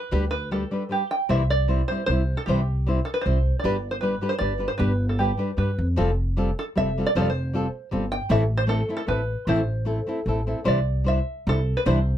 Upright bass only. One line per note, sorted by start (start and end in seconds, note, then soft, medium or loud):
0.12 0.63 D2 medium
1.29 1.80 C2 medium
2.08 2.33 C2 medium
2.47 2.98 C2 medium
3.26 3.51 C2 medium
3.64 4.14 G1 medium
4.41 4.66 G1 medium
4.79 5.30 G1 medium
5.57 5.76 G2 medium
5.78 5.96 F2 medium
5.99 6.50 F1 medium
6.77 7.02 F1 medium
7.15 7.65 F1 medium
7.92 8.17 G1 medium
8.30 8.81 A1 medium
9.08 9.34 A1 medium
9.47 9.98 A1 medium
10.26 10.52 A1 medium
10.66 11.18 C2 medium
11.47 11.72 C2 medium
11.86 12.18 C2 loud